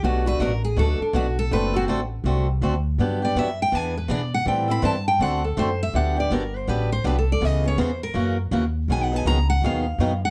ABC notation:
X:1
M:4/4
L:1/16
Q:"Swing" 1/4=163
K:G
V:1 name="Steel-string acoustic guitar"
F2 B2 _B2 _A2 =A2 D2 F2 A2 | B2 F2 z12 | z2 d2 e2 g2 ^g2 B2 d2 f2 | g2 b2 a2 g2 f2 A2 c2 e2 |
f2 d2 _B2 c2 =B2 c2 (3B2 A2 d2 | _e2 ^c2 =c2 _B4 z6 | (3^g2 f2 g2 _b2 f2 =f6 ^f2 |]
V:2 name="Steel-string acoustic guitar"
[B,,F,A,DF]2 [A,DF]2 [B,,F,A,DF] z3 [B,,F,A,DF]2 z2 [B,,F,A,DF] z3 | [D,A,CFA]2 [CFA]2 [D,A,CFA] z3 [D,A,CFA]2 z2 [D,A,CFA] z3 | [D,F,B,DG]2 [B,DG]2 [D,F,B,DG] z3 [E,B,D^G]2 z2 [E,B,DG] z3 | [E,G,CEA]2 [CEA]2 [E,G,CEA] z3 [D,A,CFA]2 z2 [D,A,CFA] z3 |
[D,F,B,DG]2 [B,DG]2 [D,F,B,DG] z3 [D,F,B,DG]2 z2 [D,F,B,DG] z3 | [^C,E,B,^C^G]2 [B,CG]2 [C,E,B,CG] z3 [C,E,^A,CF]2 z2 [C,E,A,CF] z3 | [B,,^D,F,B,^D^G]2 [F,B,DG]2 [B,,D,F,B,DG] z3 [B,,D,F,B,DG]2 z2 [B,,D,F,B,DG] z3 |]
V:3 name="Upright bass" clef=bass
B,,,4 A,,,4 D,,2 z2 B,,,4 | F,,,4 A,,,4 C,,4 D,,4 | G,,4 F,,4 E,,4 B,,4 | A,,4 G,,4 D,,4 F,,4 |
D,,4 G,,,4 A,,,4 C,,4 | ^C,,4 E,,4 F,,4 ^D,,4 | B,,,4 ^C,,4 ^D,,4 F,,4 |]